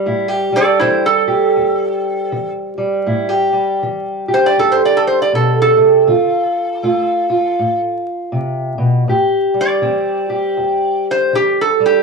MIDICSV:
0, 0, Header, 1, 3, 480
1, 0, Start_track
1, 0, Key_signature, 0, "minor"
1, 0, Tempo, 751785
1, 34, Time_signature, 4, 2, 24, 8
1, 7680, End_track
2, 0, Start_track
2, 0, Title_t, "Resonator guitar played with a steel bar"
2, 0, Program_c, 0, 25
2, 357, Note_on_c, 0, 69, 82
2, 363, Note_on_c, 0, 74, 92
2, 507, Note_on_c, 0, 64, 64
2, 514, Note_off_c, 0, 74, 0
2, 516, Note_off_c, 0, 69, 0
2, 516, Note_on_c, 0, 72, 72
2, 659, Note_off_c, 0, 64, 0
2, 671, Note_off_c, 0, 72, 0
2, 676, Note_on_c, 0, 69, 88
2, 1610, Note_off_c, 0, 69, 0
2, 2770, Note_on_c, 0, 72, 81
2, 2849, Note_on_c, 0, 74, 82
2, 2856, Note_off_c, 0, 72, 0
2, 2912, Note_off_c, 0, 74, 0
2, 2933, Note_on_c, 0, 69, 85
2, 3012, Note_on_c, 0, 72, 76
2, 3018, Note_off_c, 0, 69, 0
2, 3073, Note_off_c, 0, 72, 0
2, 3099, Note_on_c, 0, 74, 81
2, 3172, Note_on_c, 0, 69, 88
2, 3213, Note_off_c, 0, 74, 0
2, 3217, Note_off_c, 0, 69, 0
2, 3239, Note_on_c, 0, 72, 72
2, 3329, Note_off_c, 0, 72, 0
2, 3332, Note_on_c, 0, 74, 78
2, 3393, Note_off_c, 0, 74, 0
2, 3417, Note_on_c, 0, 69, 80
2, 3561, Note_off_c, 0, 69, 0
2, 3586, Note_on_c, 0, 69, 87
2, 4985, Note_off_c, 0, 69, 0
2, 6134, Note_on_c, 0, 74, 91
2, 7060, Note_off_c, 0, 74, 0
2, 7094, Note_on_c, 0, 72, 84
2, 7240, Note_off_c, 0, 72, 0
2, 7249, Note_on_c, 0, 67, 77
2, 7398, Note_off_c, 0, 67, 0
2, 7415, Note_on_c, 0, 69, 85
2, 7561, Note_off_c, 0, 69, 0
2, 7571, Note_on_c, 0, 67, 89
2, 7680, Note_off_c, 0, 67, 0
2, 7680, End_track
3, 0, Start_track
3, 0, Title_t, "Steel-string acoustic guitar"
3, 0, Program_c, 1, 25
3, 0, Note_on_c, 1, 55, 57
3, 0, Note_on_c, 1, 60, 60
3, 37, Note_on_c, 1, 45, 75
3, 41, Note_on_c, 1, 64, 69
3, 179, Note_off_c, 1, 64, 0
3, 179, Note_on_c, 1, 67, 63
3, 330, Note_off_c, 1, 55, 0
3, 333, Note_on_c, 1, 55, 57
3, 478, Note_off_c, 1, 45, 0
3, 517, Note_on_c, 1, 52, 64
3, 519, Note_off_c, 1, 60, 0
3, 522, Note_on_c, 1, 60, 64
3, 804, Note_off_c, 1, 67, 0
3, 814, Note_on_c, 1, 67, 68
3, 958, Note_off_c, 1, 52, 0
3, 999, Note_on_c, 1, 40, 67
3, 1439, Note_off_c, 1, 40, 0
3, 1482, Note_on_c, 1, 52, 66
3, 1765, Note_off_c, 1, 55, 0
3, 1773, Note_on_c, 1, 55, 57
3, 1920, Note_off_c, 1, 52, 0
3, 1937, Note_off_c, 1, 67, 0
3, 1956, Note_on_c, 1, 45, 73
3, 1960, Note_on_c, 1, 64, 68
3, 2100, Note_off_c, 1, 64, 0
3, 2100, Note_on_c, 1, 67, 57
3, 2245, Note_off_c, 1, 55, 0
3, 2252, Note_on_c, 1, 55, 54
3, 2397, Note_off_c, 1, 45, 0
3, 2443, Note_on_c, 1, 52, 66
3, 2724, Note_off_c, 1, 67, 0
3, 2734, Note_on_c, 1, 67, 69
3, 2757, Note_off_c, 1, 60, 0
3, 2881, Note_off_c, 1, 52, 0
3, 2922, Note_on_c, 1, 40, 68
3, 3360, Note_off_c, 1, 40, 0
3, 3400, Note_on_c, 1, 47, 62
3, 3680, Note_off_c, 1, 47, 0
3, 3682, Note_on_c, 1, 48, 63
3, 3857, Note_off_c, 1, 67, 0
3, 3874, Note_off_c, 1, 48, 0
3, 3878, Note_on_c, 1, 50, 72
3, 3879, Note_off_c, 1, 55, 0
3, 3883, Note_on_c, 1, 65, 62
3, 4318, Note_off_c, 1, 50, 0
3, 4359, Note_off_c, 1, 65, 0
3, 4361, Note_on_c, 1, 57, 67
3, 4367, Note_on_c, 1, 65, 69
3, 4650, Note_off_c, 1, 65, 0
3, 4658, Note_on_c, 1, 65, 67
3, 4800, Note_off_c, 1, 57, 0
3, 4847, Note_on_c, 1, 45, 66
3, 5283, Note_off_c, 1, 45, 0
3, 5313, Note_on_c, 1, 48, 67
3, 5604, Note_off_c, 1, 48, 0
3, 5607, Note_on_c, 1, 47, 66
3, 5779, Note_off_c, 1, 65, 0
3, 5795, Note_off_c, 1, 47, 0
3, 5797, Note_on_c, 1, 45, 70
3, 5806, Note_on_c, 1, 67, 70
3, 6091, Note_on_c, 1, 55, 54
3, 6239, Note_off_c, 1, 45, 0
3, 6267, Note_on_c, 1, 52, 67
3, 6273, Note_on_c, 1, 60, 64
3, 6571, Note_off_c, 1, 67, 0
3, 6573, Note_on_c, 1, 67, 64
3, 6713, Note_off_c, 1, 52, 0
3, 6750, Note_on_c, 1, 40, 68
3, 7195, Note_off_c, 1, 40, 0
3, 7233, Note_on_c, 1, 52, 64
3, 7531, Note_off_c, 1, 55, 0
3, 7533, Note_on_c, 1, 55, 60
3, 7677, Note_off_c, 1, 52, 0
3, 7680, Note_off_c, 1, 55, 0
3, 7680, Note_off_c, 1, 60, 0
3, 7680, Note_off_c, 1, 67, 0
3, 7680, End_track
0, 0, End_of_file